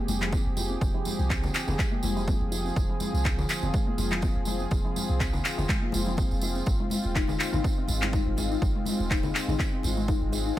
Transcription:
Already playing: F3 C4 G4 G#4
0.08 F1, tambourine, muted conga, high conga
0.21 F3, clap, tambourine, high conga
0.32 C4, kick, tambourine, muted conga, high conga
0.46 F1
0.57 F4, tambourine, muted conga, high conga
0.69 C4, tambourine
0.81 F1, kick, tambourine, muted conga, high conga
0.94 F3
1.05 F3, tambourine, high conga
1.19 C2, muted conga
1.30 C4, kick, clap, tambourine
1.43 F4, tambourine, muted conga, low conga
1.54 clap, tambourine
1.67 F1 C4, tambourine, muted conga, low conga
1.78 G#3, kick, clap, tambourine
1.92 A#3
2.03 F1, tambourine, muted conga, high conga
2.16 F3, tambourine
2.27 C4, kick, tambourine, muted conga, high conga
2.41 F1, high conga
2.52 F4, tambourine, muted conga
2.65 C4, tambourine
2.76 F1 F4, kick, tambourine, muted conga, high conga
2.89 F3
3.00 F3, tambourine, high conga
3.13 C2, tambourine, muted conga
3.25 C4, kick, clap, tambourine
3.38 F4, tambourine, muted conga, low conga
3.49 clap, tambourine
3.62 F1 C4, tambourine, muted conga, low conga
3.74 G#3, kick, tambourine
3.87 A#3
3.98 F1, tambourine, muted conga, high conga
4.11 F3, clap, tambourine, high conga
4.22 C4, kick, tambourine, muted conga, high conga
4.36 F1
4.45 F4, tambourine, muted conga, high conga
4.60 C4, tambourine
4.71 F1, kick, tambourine, muted conga, high conga
4.85 F3
4.96 F3, tambourine, high conga
5.08 C2, tambourine, muted conga
5.20 C4, kick, clap, tambourine
5.33 F4, tambourine, muted conga, low conga
5.45 clap, tambourine
5.58 F1 C4, tambourine, muted conga, low conga
5.69 G#3, kick, clap, tambourine, high conga
5.82 A#3
5.92 F1, tambourine, muted conga, high conga
6.06 F3, tambourine
6.17 C4, kick, tambourine, muted conga, high conga
6.31 F1, tambourine, high conga
6.41 F4, tambourine, muted conga
6.55 C4, tambourine
6.66 G#1 G#3, kick, tambourine, muted conga, high conga
6.80 G#3
6.90 G#3, tambourine, high conga
7.03 D#1, tambourine, muted conga
7.16 D#4, kick, clap, tambourine
7.28 G#4, tambourine, muted conga, low conga
7.40 clap, tambourine
7.52 G#1 D#4, tambourine, muted conga, low conga
7.64 C4, kick, tambourine
7.78 C4
7.88 G#1, tambourine, muted conga, high conga
8.02 G#3, clap, tambourine, high conga
8.13 D#4, kick, tambourine, muted conga, high conga
8.26 G#1
8.37 G#4, tambourine, muted conga, high conga
8.51 D#4, tambourine
8.62 G#1, kick, tambourine, muted conga, high conga
8.76 G#3
8.85 G#3, tambourine, high conga
8.99 D#1, tambourine, muted conga
9.11 D#4, kick, clap, tambourine
9.23 G#4, tambourine, muted conga, low conga
9.35 clap, tambourine
9.48 G#1 D#4, tambourine, muted conga, low conga
9.59 C4, kick, clap, tambourine, high conga
9.73 C4
9.83 G#1, tambourine, muted conga, high conga
9.97 G#3, tambourine
10.08 D#4, kick, tambourine, muted conga, high conga
10.21 G#1, high conga
10.32 G#4, tambourine, muted conga
10.46 D#4, tambourine

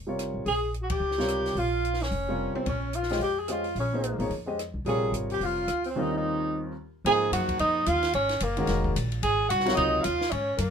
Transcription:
Already playing: F1
0.07 C3 G3 F4 A#4 C#5
0.19 cross-stick, closed hi-hat
0.34 A1
0.46 A#1 G#4, open hi-hat
0.74 closed hi-hat
0.81 F#4
0.90 G4, kick, ride
1.00 C#2
1.11 snare
1.18 C3 G3 F4 A#4 C#5, snare
1.28 cross-stick, closed hi-hat
1.46 snare, open hi-hat
1.55 A#1 F4, open hi-hat
1.85 closed hi-hat
1.93 snare
2.00 C#4, snare, open hi-hat
2.11 F1, open hi-hat
2.28 C3 G3 F4 A#4 C#5
2.55 C4, muted upright bass stroke, high tom
2.66 A#1 C#4, kick, ride
2.93 F4, closed hi-hat
3.03 snare
3.09 G#3 C#4 G4 C5 D#5, snare, open hi-hat
3.19 F2 G4, open hi-hat
3.23 G4
3.39 G#4
3.48 G#3 C#4 F4 G4 C5 D#5, cross-stick, closed hi-hat
3.64 open hi-hat
3.75 A#1 C#4, open hi-hat
3.80 C#4
3.93 F3 A#3 D#4 G#4 C5
4.04 closed hi-hat
4.18 A1 F3 A#3 D#4 G#4 C#5, open hi-hat
4.30 F2, open hi-hat
4.46 G#3 C#4 G4 C5 D#5
4.59 cross-stick, closed hi-hat
4.74 C2
4.85 A#1 C3 G3 F4 G#4 A#4 C#5, open hi-hat
5.12 G#1, closed hi-hat
5.30 G4, open hi-hat
5.40 F1 F4, open hi-hat
5.45 F4
5.68 C#2, cross-stick, closed hi-hat
5.84 C4, open hi-hat
5.90 C4
5.96 D#2 G3 C4 C#4 D#4 F4 A#4
6.01 D#4
6.13 D#4
6.17 D#4
7.04 G#2 F3 A#3 D#4 G#4 C5 G#5, ride
7.32 F#2 F#4 F#5, hi-hat pedal, ride
7.49 kick, ride
7.59 F2 D#4 D#5, ride
7.86 D#2 F4 F5, hi-hat pedal, ride
8.03 snare, ride
8.13 G#1 C#4 C#5, ride
8.29 snare, ride
8.40 F#1 A#3 A#4, hi-hat pedal, ride
8.57 D#3 G#3 C#4 F#4 A#4, ride
8.67 F1, snare, ride
8.84 kick
8.96 A#1, hi-hat pedal, ride
9.12 ride
9.22 G#1 G#4 G#5, ride
9.49 C2 F#4 F#5, hi-hat pedal, ride
9.60 snare
9.66 C3 F#3 F4 A#4 C#5, snare, ride
9.75 C#2 D#4 D#5, ride
10.01 F4 F5, hi-hat pedal, ride
10.05 D#2
10.21 snare
10.30 G#2 C#4 C#5, ride
10.57 F#2 A#3 A#4, hi-hat pedal, ride

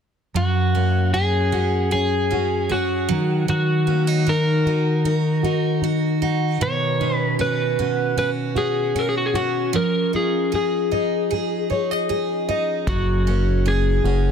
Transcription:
0.34 F#2 F#3 F#4
0.74 A#3 C#4
1.13 C#4 G#4
1.52 C#4 F#4
1.91 C#4 G#4
2.31 C#4 F#4
2.69 C#4 F#4 G#4
3.09 D#3 F#3
3.48 D#3 F#3 F#4
3.87 A#3 C#4
4.07 D#4
4.26 D#4 F#4 A#4
4.66 D#4 F#4
5.04 D#4 F#4
5.43 D#4 F#4
5.81 D#4 F#4
6.22 D#4 F#4
6.61 B2 D#3 C#5
7.00 C#4 D#4
7.16 B4
7.39 C#4 F#4 B4
7.79 C#4 F#4
8.17 C#4 F#4 B4
8.55 C#4 F#4 G#4
8.95 C#4 F#4
8.99 A#4
9.09 G#4
9.18 F#4
9.26 G#4
9.34 C#4 F#4
9.73 F3 C#4 A#4
10.13 D#4 F4 G#4
10.52 G#4
10.91 D#4 D#5
11.31 G#4
11.70 D#4 C#5
11.91 D#5
12.09 G#4
12.49 D#4 D#5
12.87 F#1 F#2 F#4, kick
13.27 A#3 C#4
13.66 C#4 G#4
14.04 F#1 C#4 F#4

